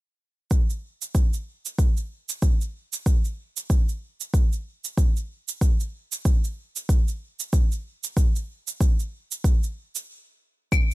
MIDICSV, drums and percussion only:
0, 0, Header, 1, 2, 480
1, 0, Start_track
1, 0, Tempo, 638298
1, 381, Time_signature, 4, 2, 24, 8
1, 8227, End_track
2, 0, Start_track
2, 0, Title_t, "Drums"
2, 382, Note_on_c, 9, 36, 91
2, 385, Note_on_c, 9, 69, 49
2, 458, Note_off_c, 9, 36, 0
2, 460, Note_off_c, 9, 69, 0
2, 525, Note_on_c, 9, 69, 27
2, 601, Note_off_c, 9, 69, 0
2, 765, Note_on_c, 9, 69, 60
2, 840, Note_off_c, 9, 69, 0
2, 863, Note_on_c, 9, 36, 86
2, 864, Note_on_c, 9, 69, 47
2, 938, Note_off_c, 9, 36, 0
2, 939, Note_off_c, 9, 69, 0
2, 1003, Note_on_c, 9, 69, 31
2, 1079, Note_off_c, 9, 69, 0
2, 1245, Note_on_c, 9, 69, 55
2, 1320, Note_off_c, 9, 69, 0
2, 1343, Note_on_c, 9, 36, 89
2, 1344, Note_on_c, 9, 69, 47
2, 1418, Note_off_c, 9, 36, 0
2, 1420, Note_off_c, 9, 69, 0
2, 1482, Note_on_c, 9, 69, 28
2, 1558, Note_off_c, 9, 69, 0
2, 1723, Note_on_c, 9, 69, 61
2, 1798, Note_off_c, 9, 69, 0
2, 1822, Note_on_c, 9, 36, 90
2, 1822, Note_on_c, 9, 69, 45
2, 1898, Note_off_c, 9, 36, 0
2, 1898, Note_off_c, 9, 69, 0
2, 1964, Note_on_c, 9, 69, 31
2, 2039, Note_off_c, 9, 69, 0
2, 2202, Note_on_c, 9, 69, 65
2, 2278, Note_off_c, 9, 69, 0
2, 2302, Note_on_c, 9, 36, 99
2, 2304, Note_on_c, 9, 69, 52
2, 2377, Note_off_c, 9, 36, 0
2, 2379, Note_off_c, 9, 69, 0
2, 2442, Note_on_c, 9, 69, 28
2, 2518, Note_off_c, 9, 69, 0
2, 2683, Note_on_c, 9, 69, 65
2, 2759, Note_off_c, 9, 69, 0
2, 2782, Note_on_c, 9, 36, 100
2, 2784, Note_on_c, 9, 69, 50
2, 2857, Note_off_c, 9, 36, 0
2, 2859, Note_off_c, 9, 69, 0
2, 2924, Note_on_c, 9, 69, 31
2, 3000, Note_off_c, 9, 69, 0
2, 3164, Note_on_c, 9, 69, 57
2, 3239, Note_off_c, 9, 69, 0
2, 3261, Note_on_c, 9, 36, 98
2, 3265, Note_on_c, 9, 69, 51
2, 3337, Note_off_c, 9, 36, 0
2, 3340, Note_off_c, 9, 69, 0
2, 3403, Note_on_c, 9, 69, 29
2, 3478, Note_off_c, 9, 69, 0
2, 3644, Note_on_c, 9, 69, 57
2, 3719, Note_off_c, 9, 69, 0
2, 3742, Note_on_c, 9, 36, 98
2, 3745, Note_on_c, 9, 69, 53
2, 3817, Note_off_c, 9, 36, 0
2, 3820, Note_off_c, 9, 69, 0
2, 3885, Note_on_c, 9, 69, 32
2, 3960, Note_off_c, 9, 69, 0
2, 4123, Note_on_c, 9, 69, 68
2, 4198, Note_off_c, 9, 69, 0
2, 4221, Note_on_c, 9, 36, 93
2, 4224, Note_on_c, 9, 69, 54
2, 4296, Note_off_c, 9, 36, 0
2, 4299, Note_off_c, 9, 69, 0
2, 4364, Note_on_c, 9, 69, 33
2, 4439, Note_off_c, 9, 69, 0
2, 4602, Note_on_c, 9, 69, 66
2, 4678, Note_off_c, 9, 69, 0
2, 4702, Note_on_c, 9, 36, 102
2, 4703, Note_on_c, 9, 69, 50
2, 4777, Note_off_c, 9, 36, 0
2, 4778, Note_off_c, 9, 69, 0
2, 4845, Note_on_c, 9, 69, 31
2, 4920, Note_off_c, 9, 69, 0
2, 5083, Note_on_c, 9, 69, 57
2, 5158, Note_off_c, 9, 69, 0
2, 5182, Note_on_c, 9, 36, 92
2, 5185, Note_on_c, 9, 69, 54
2, 5257, Note_off_c, 9, 36, 0
2, 5260, Note_off_c, 9, 69, 0
2, 5324, Note_on_c, 9, 69, 32
2, 5399, Note_off_c, 9, 69, 0
2, 5563, Note_on_c, 9, 69, 65
2, 5638, Note_off_c, 9, 69, 0
2, 5662, Note_on_c, 9, 36, 92
2, 5663, Note_on_c, 9, 69, 51
2, 5737, Note_off_c, 9, 36, 0
2, 5738, Note_off_c, 9, 69, 0
2, 5804, Note_on_c, 9, 69, 32
2, 5879, Note_off_c, 9, 69, 0
2, 6044, Note_on_c, 9, 69, 68
2, 6120, Note_off_c, 9, 69, 0
2, 6142, Note_on_c, 9, 36, 97
2, 6145, Note_on_c, 9, 69, 54
2, 6217, Note_off_c, 9, 36, 0
2, 6220, Note_off_c, 9, 69, 0
2, 6285, Note_on_c, 9, 69, 32
2, 6360, Note_off_c, 9, 69, 0
2, 6523, Note_on_c, 9, 69, 68
2, 6598, Note_off_c, 9, 69, 0
2, 6622, Note_on_c, 9, 36, 94
2, 6625, Note_on_c, 9, 69, 52
2, 6697, Note_off_c, 9, 36, 0
2, 6700, Note_off_c, 9, 69, 0
2, 6765, Note_on_c, 9, 69, 30
2, 6840, Note_off_c, 9, 69, 0
2, 7004, Note_on_c, 9, 69, 62
2, 7080, Note_off_c, 9, 69, 0
2, 7101, Note_on_c, 9, 36, 97
2, 7105, Note_on_c, 9, 69, 55
2, 7176, Note_off_c, 9, 36, 0
2, 7180, Note_off_c, 9, 69, 0
2, 7245, Note_on_c, 9, 69, 31
2, 7320, Note_off_c, 9, 69, 0
2, 7484, Note_on_c, 9, 69, 61
2, 7560, Note_off_c, 9, 69, 0
2, 8061, Note_on_c, 9, 36, 95
2, 8062, Note_on_c, 9, 75, 78
2, 8066, Note_on_c, 9, 69, 52
2, 8136, Note_off_c, 9, 36, 0
2, 8137, Note_off_c, 9, 75, 0
2, 8141, Note_off_c, 9, 69, 0
2, 8227, End_track
0, 0, End_of_file